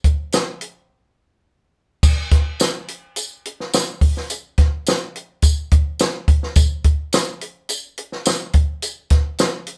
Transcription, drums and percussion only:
0.04 kick, closed hi-hat
0.32 snare, closed hi-hat, tambourine
0.61 closed hi-hat
2.03 kick, crash, tambourine
2.31 kick, snare, closed hi-hat
2.59 snare, closed hi-hat, tambourine
2.88 closed hi-hat
3.16 closed hi-hat, tambourine
3.45 closed hi-hat
3.60 snare
3.73 snare, closed hi-hat, tambourine
4.01 kick, open hi-hat
4.17 snare
4.30 closed hi-hat, tambourine
4.58 kick, snare, closed hi-hat
4.87 snare, closed hi-hat, tambourine
5.16 closed hi-hat
5.42 kick, closed hi-hat, tambourine
5.71 kick, closed hi-hat
5.99 snare, closed hi-hat, tambourine
6.28 kick, closed hi-hat
6.43 snare
6.56 kick, closed hi-hat, tambourine
6.84 kick, closed hi-hat
7.12 snare, closed hi-hat, tambourine
7.41 closed hi-hat
7.69 closed hi-hat, tambourine
7.98 closed hi-hat
8.12 snare
8.26 snare, closed hi-hat, tambourine
8.53 kick, closed hi-hat
8.82 closed hi-hat, tambourine
9.10 kick, snare, closed hi-hat
9.38 snare, closed hi-hat, tambourine
9.67 closed hi-hat

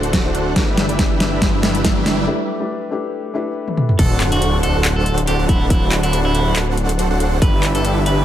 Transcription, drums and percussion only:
0.03 closed hi-hat
0.13 kick, snare, closed hi-hat
0.35 closed hi-hat
0.56 kick, snare, closed hi-hat
0.78 snare, closed hi-hat
0.89 closed hi-hat
0.99 kick, snare, closed hi-hat
1.20 snare, closed hi-hat
1.42 kick, snare, closed hi-hat
1.63 snare, closed hi-hat
1.75 closed hi-hat
1.85 kick, snare, closed hi-hat
2.06 snare, closed hi-hat
3.68 high tom
3.77 mid tom
3.89 mid tom
3.99 kick, closed hi-hat, crash
4.20 clap, closed hi-hat
4.32 closed hi-hat
4.42 closed hi-hat
4.63 closed hi-hat
4.85 clap, closed hi-hat
5.06 closed hi-hat
5.18 closed hi-hat
5.27 closed hi-hat
5.49 kick, closed hi-hat
5.70 kick, closed hi-hat
5.92 clap, closed hi-hat
6.03 closed hi-hat
6.13 closed hi-hat
6.35 closed hi-hat
6.56 clap, closed hi-hat
6.77 closed hi-hat
6.89 closed hi-hat
6.99 closed hi-hat
7.20 closed hi-hat
7.42 kick, closed hi-hat
7.63 clap, closed hi-hat
7.75 closed hi-hat
7.85 closed hi-hat
8.06 closed hi-hat

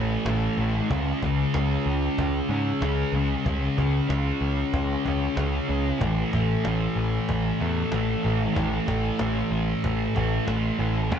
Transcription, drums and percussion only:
0.26 cajon slap
0.91 cajon bass
1.23 cajon bass
1.54 cajon slap
2.18 cajon bass
2.82 cajon slap
3.46 cajon bass
3.78 cajon bass
4.10 cajon slap
4.57 cajon slap
4.74 cajon bass
5.05 cajon bass
5.37 cajon slap
6.01 cajon bass
6.33 cajon bass
6.65 cajon slap
7.29 cajon bass
7.92 cajon slap
8.56 cajon bass
8.88 cajon bass
9.19 cajon slap
9.68 cajon slap
9.84 cajon bass
10.16 cajon bass
10.48 cajon slap
11.12 cajon bass

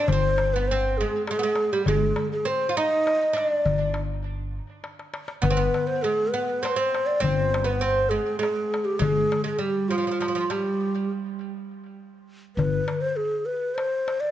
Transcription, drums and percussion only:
0.08 darbuka dum
0.38 darbuka tek
0.99 darbuka ka
1.27 darbuka tek
1.55 darbuka tek
1.72 darbuka ka
1.86 darbuka dum
2.16 darbuka tek
3.07 darbuka tek
3.37 darbuka tek
3.52 darbuka ka
3.66 darbuka dum
3.94 darbuka tek
4.24 darbuka ka
4.84 darbuka tek
4.99 darbuka ka
5.14 darbuka tek
5.28 darbuka ka
5.43 darbuka dum
5.74 darbuka tek
6.35 darbuka ka
6.65 darbuka tek
6.94 darbuka tek
7.10 darbuka ka
7.24 darbuka dum
7.54 darbuka tek
8.43 darbuka tek
8.74 darbuka tek
8.89 darbuka ka
9.02 darbuka dum
9.32 darbuka tek
9.93 darbuka ka
10.22 darbuka tek
10.51 darbuka tek
12.59 darbuka dum
12.88 darbuka tek
13.49 darbuka ka
13.78 darbuka tek
14.08 darbuka tek
14.23 darbuka ka

